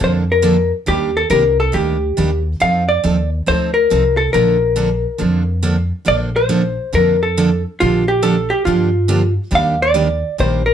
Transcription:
0.00 upright bass F2, steel-string acoustic guitar D3 F3 A#3 D4 A4, hollow-body jazz guitar C5
0.32 hollow-body jazz guitar A#4
0.42 steel-string acoustic guitar D3 F3 A#3 D4 A4
0.86 upright bass D#2, steel-string acoustic guitar D#3 G3 A#3 D4 G4, hollow-body jazz guitar G4
1.17 hollow-body jazz guitar A4
1.30 upright bass C2, steel-string acoustic guitar D#3 G3 A#3 D4 G4, hollow-body jazz guitar A#4
1.60 hollow-body jazz guitar A4
1.72 upright bass D2, steel-string acoustic guitar D#3 G3 A#3 D4 G4, hollow-body jazz guitar G4
2.17 upright bass D#2, steel-string acoustic guitar D#3 G3 A#3 D4 G4
2.60 upright bass F2, steel-string acoustic guitar F3 C4 D#4 A4, hollow-body jazz guitar F5
2.89 hollow-body jazz guitar D5
3.04 upright bass D#2, steel-string acoustic guitar F3 C4 D#4 A4
3.46 upright bass D2, steel-string acoustic guitar F3 C4 D#4 A4, hollow-body jazz guitar C5
3.74 hollow-body jazz guitar A#4
3.90 upright bass C2, steel-string acoustic guitar F3 C4 D#4 A4
4.17 hollow-body jazz guitar A4
4.33 upright bass A#1, steel-string acoustic guitar D3 F3 A#3 D4 A4, hollow-body jazz guitar A#4
4.76 steel-string acoustic guitar D3 F3 A#3 D4 A4
5.18 upright bass F2, steel-string acoustic guitar D3 F3 A#3 D4 A4
5.63 steel-string acoustic guitar D3 F3 A#3 D4 A4
6.05 upright bass A#1, steel-string acoustic guitar D3 F3 A#3 D4 A4, hollow-body jazz guitar D5
6.36 hollow-body jazz guitar C5
6.49 steel-string acoustic guitar D3 F3 A#3 D4 A4
6.93 upright bass F2, steel-string acoustic guitar D3 F3 A#3 D4 A4, hollow-body jazz guitar A#4
7.23 hollow-body jazz guitar A4
7.37 steel-string acoustic guitar D3 F3 A#3 D4 A4
7.80 upright bass A#1, steel-string acoustic guitar D3 F3 A#3 D4 G4, hollow-body jazz guitar F4
8.08 hollow-body jazz guitar G4
8.22 steel-string acoustic guitar D3 F3 A#3 D4 G4, hollow-body jazz guitar A4
8.50 hollow-body jazz guitar G4
8.65 upright bass G2, steel-string acoustic guitar D3 F3 A#3 D4 G4, hollow-body jazz guitar F4
9.08 steel-string acoustic guitar D3 F3 A#3 D4 G4
9.51 upright bass D#2, steel-string acoustic guitar D#3 G3 A#3 D4 G4
9.55 hollow-body jazz guitar F5
9.82 hollow-body jazz guitar D5
9.94 steel-string acoustic guitar D#3 G3 A#3 D4 G4
10.38 upright bass A#1, steel-string acoustic guitar D#3 G3 A#3 D4 G4, hollow-body jazz guitar C5
10.66 hollow-body jazz guitar A#4

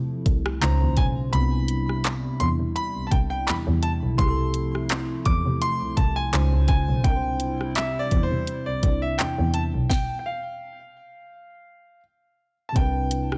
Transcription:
Already playing: double bass C3, tine electric piano C3 C4 E4 G4 A4, analog synth pad F3 A3 E4
0.26 double bass C2, kick, closed hi-hat
0.46 cross-stick
0.60 double bass C#2, tine electric piano C#3 C#4 D#4 F4, analog synth pad C#3 G#3 F4 C5, grand piano A#5, clap, closed hi-hat
0.64 tine electric piano C5
0.81 double bass D#2
0.97 double bass B1, grand piano G#5, kick, closed hi-hat
1.29 double bass C2, tine electric piano C3 C4, analog synth pad C3 G3 E4, grand piano B5, closed hi-hat
1.34 tine electric piano D4 E4
1.38 tine electric piano B3
1.68 closed hi-hat
1.89 cross-stick
2.04 clap, closed hi-hat
2.40 double bass E2, grand piano C6, closed hi-hat
2.60 double bass C3
2.76 grand piano B5, closed hi-hat
2.95 double bass C2
3.07 grand piano A5
3.11 double bass C2, grand piano G5, kick, closed hi-hat
3.30 grand piano G5
3.47 double bass E2, grand piano B5, clap, closed hi-hat
3.67 double bass E2
3.83 grand piano A5, closed hi-hat
4.03 double bass B1
4.15 double bass C2, tine electric piano C3 C4, analog synth pad F3 A3, grand piano C6, kick, closed hi-hat
4.19 tine electric piano E4 G4
4.24 tine electric piano G#4
4.30 tine electric piano A4
4.54 closed hi-hat
4.75 cross-stick
4.89 clap, closed hi-hat
5.25 double bass E2, grand piano D6, kick, closed hi-hat
5.46 double bass C3
5.62 grand piano C6, closed hi-hat
5.81 double bass C2
5.97 double bass C2, grand piano A5, kick, closed hi-hat
6.16 grand piano G#5
6.32 double bass C#2, tine electric piano C#3 C#4 D#4 F4, analog synth pad C#3 G#3 F4 C5, clap, closed hi-hat
6.36 tine electric piano C5
6.53 double bass C#2
6.68 grand piano G#5, kick, closed hi-hat
6.89 double bass B1
7.01 double bass C2, tine electric piano C3 C4, analog synth pad C3 G3 C4 E4, grand piano G5, kick, closed hi-hat
7.05 tine electric piano D4 E4
7.09 tine electric piano A#4
7.16 tine electric piano C5
7.40 closed hi-hat
7.61 cross-stick
7.75 grand piano E5, clap, closed hi-hat
7.99 grand piano D5
8.11 double bass E2, kick, closed hi-hat
8.23 grand piano C5
8.31 double bass C3
8.47 closed hi-hat
8.66 double bass C2, grand piano D5
8.82 double bass C2, tine electric piano C3 C4 D4 E4, kick, closed hi-hat
8.86 tine electric piano D5
9.02 grand piano E5
9.18 double bass E2, grand piano G5, clap, closed hi-hat
9.38 double bass E2
9.54 grand piano A5, closed hi-hat
9.74 double bass B1
9.90 grand piano G5, kick, snare
10.19 grand piano G5
10.26 grand piano F5
12.69 tine electric piano C3, grand piano A5
12.74 double bass C2, analog synth pad C3 E3 G3 B4, tine electric piano C4 D4, grand piano G5, kick, closed hi-hat
12.79 tine electric piano E4 B4
13.11 closed hi-hat
13.32 cross-stick

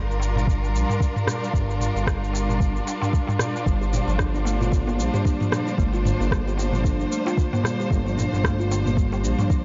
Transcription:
Already playing: analog synth bass G1, string section G3 D4 F4 A#4
0.11 shaker
0.20 darbuka tek, shaker
0.36 darbuka dum, shaker
0.47 kick, shaker
0.62 darbuka ka, darbuka tek, shaker
0.74 analog synth bass A#1, shaker
0.89 mid tom, darbuka ka, shaker
1.00 kick, shaker
1.16 mid tom, shaker
1.27 cross-stick, darbuka dum, shaker
1.44 shaker
1.54 analog synth bass G1, kick, shaker
1.70 darbuka ka, shaker
1.80 mid tom, darbuka ka, shaker
1.95 analog synth bass G1, darbuka ka, shaker
2.07 kick, cross-stick, shaker
2.24 shaker
2.33 darbuka tek, shaker
2.49 darbuka dum, shaker
2.60 kick, shaker
2.76 shaker
2.87 darbuka tek, shaker
3.02 mid tom, darbuka tek, shaker
3.13 kick, darbuka ka, shaker
3.27 mid tom, darbuka tek, shaker
3.39 cross-stick, darbuka ka, darbuka dum, shaker
3.55 darbuka tek, shaker
3.66 analog synth bass G1, kalimba G3, string section C5, kick, shaker
3.81 kalimba G4, shaker
3.93 kalimba D4, darbuka ka, darbuka dum, shaker
4.08 analog synth bass G1, kalimba F3, shaker
4.19 kalimba D4, kick, cross-stick, shaker
4.34 kalimba D4, shaker
4.45 kalimba A3, darbuka tek, shaker
4.61 kalimba F4, darbuka dum, shaker
4.72 kalimba D3, kick, shaker
4.87 kalimba A#3, darbuka ka, darbuka tek, shaker
4.99 analog synth bass A#1, kalimba G3, shaker
5.14 kalimba G4, mid tom, darbuka ka, shaker
5.25 kalimba D4, kick, shaker
5.40 kalimba F3, mid tom, shaker
5.52 kalimba D4, cross-stick, darbuka dum, shaker
5.67 kalimba D4, shaker
5.78 analog synth bass G1, kalimba A3, kick, shaker
5.93 kalimba F4, darbuka ka, shaker
6.05 kalimba D3, mid tom, darbuka ka, shaker
6.20 analog synth bass G1, kalimba A#3, shaker
6.31 kalimba G3, kick, cross-stick, shaker
6.48 kalimba G4, shaker
6.58 kalimba D4, darbuka tek, shaker
6.73 kalimba F3, darbuka dum, shaker
6.84 kalimba D4, kick, shaker
7.00 kalimba D4, shaker
7.11 kalimba A3, shaker
7.26 kalimba F4, darbuka tek, shaker
7.37 kalimba D3, kick, darbuka ka, shaker
7.53 kalimba A#3, mid tom, darbuka tek, shaker
7.64 kalimba G3, cross-stick, darbuka ka, darbuka dum, shaker
7.79 kalimba G4, darbuka tek, shaker
7.91 analog synth bass G1, kalimba D4, kick, shaker
8.07 kalimba F3, shaker
8.18 kalimba D4, darbuka ka, darbuka dum, shaker
8.33 analog synth bass G1, kalimba D4, shaker
8.44 kalimba A3, kick, cross-stick, shaker
8.59 kalimba F4, shaker
8.71 kalimba D3, darbuka tek, shaker
8.86 kalimba A#3, darbuka dum, shaker
8.97 kalimba G3, kick, shaker
9.12 kalimba G4, darbuka ka, darbuka tek, shaker
9.24 analog synth bass A#1, kalimba D4, shaker
9.39 kalimba F3, mid tom, darbuka ka, shaker
9.50 kalimba D4, kick, shaker

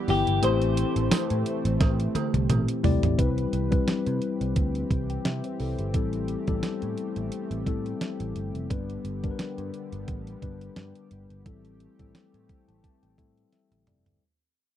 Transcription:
Already playing: analog synth pad E3 G3 B3 G4
0.08 picked electric bass G1, tine electric piano B3 E4 G4, clean electric guitar G4, open hi-hat
0.27 picked electric bass G1, closed hi-hat
0.42 picked electric bass A1, tine electric piano A3 C4 E4 G4 C5, analog synth pad A3 C4, clean electric guitar C5, closed hi-hat, cowbell
0.62 closed hi-hat
0.77 closed hi-hat
0.96 picked electric bass A1, closed hi-hat
1.11 snare, closed hi-hat, tambourine, cowbell
1.30 picked electric bass A2, closed hi-hat
1.46 closed hi-hat
1.65 picked electric bass A1, closed hi-hat
1.81 picked electric bass A1, kick, snare, closed hi-hat, cowbell
2.00 closed hi-hat
2.15 muted picked electric bass stroke, closed hi-hat, high tom, cowbell
2.34 picked electric bass C2, closed hi-hat, high tom
2.49 picked electric bass A1, closed hi-hat, mid tom, cowbell
2.68 closed hi-hat
2.83 picked electric bass C2, tine electric piano A3 C4 E4 G4 D5, floor tom, open hi-hat
3.03 picked electric bass A1, closed hi-hat, floor tom
3.17 picked electric bass C2, analog synth pad E3 C4 G4 B4, tine electric piano G3 C4 E4 B4, kick, closed hi-hat
3.38 closed hi-hat
3.53 picked electric bass C2, closed hi-hat
3.71 tine electric piano G3 C4 E4 B4, kick, closed hi-hat
3.88 muted picked electric bass stroke, snare, closed hi-hat
4.06 picked electric bass C3, closed hi-hat
4.22 closed hi-hat
4.41 picked electric bass C2, closed hi-hat
4.56 picked electric bass D2, kick, closed hi-hat
4.75 closed hi-hat
4.91 picked electric bass C2, kick, closed hi-hat
5.10 tine electric piano G5, closed hi-hat
5.25 picked electric bass C3, tine electric piano E5, snare, closed hi-hat
5.44 tine electric piano C5, closed hi-hat
5.60 picked electric bass C2, tine electric piano A4, open hi-hat
5.79 picked electric bass G1, tine electric piano G4, closed hi-hat
5.94 picked electric bass A1, tine electric piano G3 C4 E4 A4, analog synth pad A3, kick, closed hi-hat
6.13 closed hi-hat
6.28 closed hi-hat
6.47 picked electric bass A1, tine electric piano G3 B3 E4 A4, kick, closed hi-hat
6.55 tine electric piano C4
6.63 muted picked electric bass stroke, snare, closed hi-hat
6.82 picked electric bass A2, closed hi-hat
6.97 closed hi-hat
7.16 picked electric bass A1, closed hi-hat
7.32 closed hi-hat
7.51 picked electric bass A1, closed hi-hat
7.66 picked electric bass A2, tine electric piano G3 C4 E4 A4, kick, closed hi-hat
7.86 closed hi-hat
8.01 snare, closed hi-hat
8.20 picked electric bass A1, closed hi-hat
8.36 picked electric bass G1, closed hi-hat
8.55 picked electric bass F1, closed hi-hat
8.69 picked electric bass G1, analog synth pad D3 G3 B3, tine electric piano G3 B3 D4 B4, kick, closed hi-hat
8.90 closed hi-hat
9.05 picked electric bass G1, closed hi-hat
9.23 tine electric piano G3 B3 D4 A#4, kick, closed hi-hat
9.31 tine electric piano B4
9.39 muted picked electric bass stroke, snare, closed hi-hat
9.58 picked electric bass G2, closed hi-hat
9.74 closed hi-hat
9.92 picked electric bass G1, closed hi-hat
10.08 picked electric bass A1, kick, closed hi-hat
10.27 closed hi-hat
10.42 picked electric bass G1, tine electric piano G3 B3 D4 B4, kick, closed hi-hat
10.61 closed hi-hat
10.76 picked electric bass G2, snare, closed hi-hat
10.95 closed hi-hat
11.11 picked electric bass G1, closed hi-hat
11.30 picked electric bass G1, closed hi-hat
11.45 picked electric bass A1, analog synth pad E3 A3 C4 G4, tine electric piano G3 C4 E4 A4, kick, closed hi-hat
11.65 closed hi-hat
11.80 closed hi-hat
11.99 picked electric bass A1, tine electric piano G3 C4 E4 A4, kick, closed hi-hat
12.15 snare, closed hi-hat
12.34 picked electric bass A2, closed hi-hat
12.49 tine electric piano G5, kick, closed hi-hat
12.68 picked electric bass A1, tine electric piano A5, closed hi-hat
12.84 tine electric piano A5, kick, closed hi-hat
13.03 picked electric bass A1, tine electric piano G5, closed hi-hat
13.17 picked electric bass A2, tine electric piano G3 C4 E4 A4 E5, kick, closed hi-hat
13.37 closed hi-hat
13.53 tine electric piano E5, snare, closed hi-hat
13.72 picked electric bass A1, closed hi-hat, high tom
13.87 picked electric bass F1, tine electric piano D5, closed hi-hat, mid tom
14.06 picked electric bass G1, closed hi-hat, floor tom

